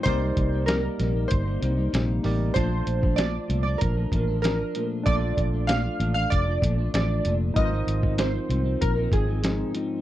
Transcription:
<<
  \new Staff \with { instrumentName = "Synth keys" } { \time 4/4 \key bes \major \tempo 4 = 96 c''4 bes'4 c''4. r8 | c''4 d''8. d''16 bes'4 bes'8. r16 | d''4 f''8. f''16 d''4 d''8. r16 | ees''4 c''4 bes'8 aes'4 r8 | }
  \new Staff \with { instrumentName = "Tine electric piano" } { \time 4/4 \key bes \major <ees' g' bes' d''>2.~ <ees' g' bes' d''>8 <ees' g' bes' d''>8 | <d' f' c'' a''>1 | <d' f' a' d''>1 | <ees' f' bes' ces'' c''>1 | }
  \new Staff \with { instrumentName = "Clean electric guitar" } { \time 4/4 \key bes \major <c g bes ees'>16 <g bes ees'>8 <g bes ees'>16 <c g bes ees'>16 <g bes ees'>16 <c g bes ees'>16 <g bes ees'>8 <g bes ees'>16 <c g bes ees'>16 <g bes ees'>16 <c g bes ees'>8 <c g bes ees'>8 | <bes, f a d'>16 <f a d'>8 <f a d'>16 <bes, f a d'>16 <f a d'>16 <bes, f a d'>16 <f a d'>8 <f a d'>16 <bes, f a d'>16 <f a d'>16 <f d'>8 <bes, f a d'>8 | <bes, f a d'>16 <f a>8 <f a d'>16 <bes, f a d'>16 <f a d'>16 <bes, f a d'>16 <f a d'>8 <f a d'>16 <bes, f a d'>16 <f a d'>16 <f a d'>8 <bes, f a d'>8 | <aes, f c' ees'>16 <f c' ees'>8 <f c' ees'>16 <aes, f c' ees'>16 <f c'>16 <aes, f c' ees'>16 <f c' ees'>8 <f c' ees'>16 <aes, f c' ees'>16 <f c' ees'>16 <aes, f c' ees'>8 <aes, f c' ees'>8 | }
  \new Staff \with { instrumentName = "Fingered electric bass" } { \clef bass \time 4/4 \key bes \major c,8 c,4 bes,,8 g,,8 c,8 bes,,8 a,,8 | bes,,8 bes,,4 c,8 bes,,8 a,,4 r8 | bes,,8 bes,,4 a,,8 f,,8 bes,,8 a,,8 f,,8 | aes,,8 aes,,4 c,8 bes,,8 aes,,4 r8 | }
  \new DrumStaff \with { instrumentName = "Drums" } \drummode { \time 4/4 <hh bd>8 <hh bd>8 <hh sn>8 <hh sn>8 <hh bd>8 hh8 <hh sn>8 hho8 | <hh bd>8 hh16 bd16 <hh sn>8 hh8 <hh bd>8 <hh bd>8 <hh sn>8 hh8 | <hh bd>8 <hh bd>8 <hh sn>8 hh8 <hh bd>8 <hh bd>8 <hh sn>8 hh8 | <hh bd>8 hh16 bd16 <hh sn>8 hh8 <hh bd>8 <hh bd>8 <hh sn>8 hh8 | }
>>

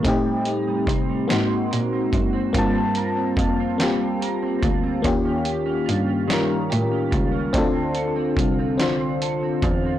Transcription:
<<
  \new Staff \with { instrumentName = "FM electric piano" } { \time 6/8 \key ees \lydian \tempo 4. = 48 <a c' ees' g'>4. <bes c' ees' ges'>4. | <bes c' f' a''>4. <bes c' f' g'>4. | <bes des' f' g'>4. <g des' f' bes'>4. | <c' d' f' a'>4. <c' d' f' c''>4. | }
  \new Staff \with { instrumentName = "Clean electric guitar" } { \time 6/8 \key ees \lydian a,16 g16 ees'16 g16 c'16 g16 aes16 c'16 bes'16 c'16 ges'16 c'16 | g16 c'16 bes'16 c'16 f'16 c'16 g16 c'16 bes'16 c'16 f'16 c'16 | ees16 des'16 g'16 des'16 f'16 des'16 ees16 des'16 g'16 des'16 f'16 des'16 | d16 c'16 a'16 c'16 f'16 c'16 d16 c'16 a'16 c'16 f'16 c'16 | }
  \new Staff \with { instrumentName = "Cello" } { \clef bass \time 6/8 \key ees \lydian a,4 c8 aes,8 bes,8 ges,8 | g,4 f,4. d,8 | ees,4 g,4 a,8 des,8 | d,4 c,4. e,8 | }
  \new DrumStaff \with { instrumentName = "Drums" } \drummode { \time 6/8 <hh bd>8 hh8 <hh bd>8 <hh sn>8 hh8 <hh bd>8 | <hh bd>8 hh8 <hh bd>8 <hh sn>8 hh8 <hh bd>8 | <hh bd>8 hh8 hh8 <hh sn>8 hh8 <hh bd>8 | <hh bd>8 hh8 <hh bd>8 <hh sn>8 hh8 <hh bd>8 | }
>>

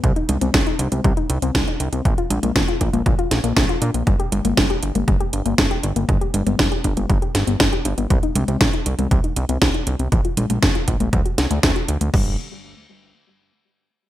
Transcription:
<<
  \new Staff \with { instrumentName = "Synth arpeggio sound" } { \time 4/4 \key g \minor \tempo 4 = 119 g16 ees'16 d'16 c'16 g16 ees'16 d'16 c'16 g16 ees'16 d'16 c'16 g16 ees'16 d'16 c'16 | f16 f'16 d'16 bes16 f16 f'16 d'16 bes16 f16 f'16 d'16 bes16 f16 f'16 d'16 bes16 | g16 g'16 d'16 bes16 g16 g'16 d'16 bes16 g16 g'16 d'16 bes16 g16 g'16 d'16 bes16 | g16 g'16 d'16 b16 g16 g'16 d'16 b16 g16 g'16 d'16 b16 g16 g'16 d'16 b16 |
g16 ees'16 d'16 c'16 g16 ees'16 d'16 c'16 g16 ees'16 d'16 c'16 g16 ees'16 d'16 c'16 | f16 f'16 d'16 bes16 f16 f'16 d'16 bes16 fis16 fis'16 d'16 a16 fis16 fis'16 d'16 a16 | g8 r2. r8 | }
  \new Staff \with { instrumentName = "Analog synth bass" } { \clef bass \time 4/4 \key g \minor c,16 r16 c,16 c,16 bes,,16 r16 c,16 c,16 c,16 r16 c,16 c,16 c,16 r16 c,16 c,16 | bes,,16 r16 bes,,16 bes,,16 f,,16 r16 bes,,16 bes,,16 bes,,16 r16 bes,,16 bes,,16 bes,,16 r16 bes,16 bes,,16 | g,,16 r16 g,,16 g,,16 f,,16 r16 g,,16 g,,16 g,,16 r16 g,,16 g,,16 g,,16 r16 g,,16 g,,16 | g,,16 r16 g,,16 g,,16 f,,16 r16 g,,16 g,,16 g,,16 r16 g,,16 g,,16 g,,16 r16 g,,16 g,,16 |
c,16 r16 c,16 c,16 bes,,16 r16 c,16 c,16 c,16 r16 c,16 c,16 c,16 r16 c,16 c,16 | bes,,16 r16 bes,,16 bes,,16 f,,16 r16 bes,,16 bes,,16 d,16 r16 c,16 d,16 d,16 r16 d,16 d,16 | g,,8 r2. r8 | }
  \new DrumStaff \with { instrumentName = "Drums" } \drummode { \time 4/4 <hh bd>16 hh16 <cgho hh>16 <cgho hh>16 <hh bd sn>16 hh16 hh16 <cgho hh>16 <hh bd>16 hh16 hh16 hh16 <hh bd sn>16 hh16 hh16 hh16 | <hh bd>16 hh16 <cgho hh>16 <cgho hh>16 <hh bd sn>16 hh16 <hh bd>16 <cgho hh>16 <hh bd>16 hh16 <hh sn>16 hh16 <hh bd sn>16 hh16 hh16 hh16 | <hh bd>16 hh16 <cgho hh>16 <cgho hh>16 <hh bd sn>16 hh16 hh16 <cgho hh>16 <hh bd>16 hh16 hh16 hh16 <hh bd sn>16 hh16 hh16 hh16 | <hh bd>16 hh16 <cgho hh>16 <cgho hh>16 <hh bd sn>16 hh16 <hh bd>16 <cgho hh>16 <hh bd>16 hh16 <hh sn>16 hh16 <hh bd sn>16 hh16 hh16 hh16 |
<hh bd>16 hh16 <cgho hh>16 <cgho hh>16 <hh bd sn>16 hh16 hh16 <cgho hh>16 <hh bd>16 hh16 hh16 hh16 <hh bd sn>16 hh16 hh16 hh16 | <hh bd>16 hh16 <cgho hh>16 <cgho hh>16 <hh bd sn>16 hh16 <hh bd>16 <cgho hh>16 <hh bd>16 hh16 <hh sn>16 hh16 <hh bd sn>16 hh16 hh16 hh16 | <cymc bd>4 r4 r4 r4 | }
>>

